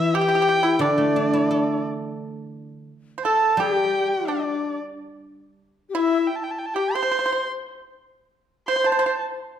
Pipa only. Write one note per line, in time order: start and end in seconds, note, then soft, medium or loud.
0.15 0.20 G4 medium
0.21 0.27 G4 medium
0.29 0.34 G4 medium
0.35 0.41 G4 medium
0.42 0.48 G4 medium
0.49 0.56 G4 medium
0.63 0.79 E4 medium
0.81 1.81 D4 medium
3.18 3.25 C5 medium
3.25 3.57 A4 medium
3.60 4.24 G4 medium
4.28 4.75 D4 medium
5.95 6.26 E4 medium
6.76 6.95 G4 medium
6.95 7.01 C5 medium
7.03 7.10 C5 medium
7.11 7.18 C5 medium
7.19 7.25 C5 soft
7.26 7.31 C5 medium
7.32 7.40 C5 soft
8.68 8.75 C5 medium
8.76 8.83 C5 medium
8.84 8.91 C5 medium
8.92 8.98 C5 medium
8.99 9.05 C5 medium
9.06 9.13 C5 medium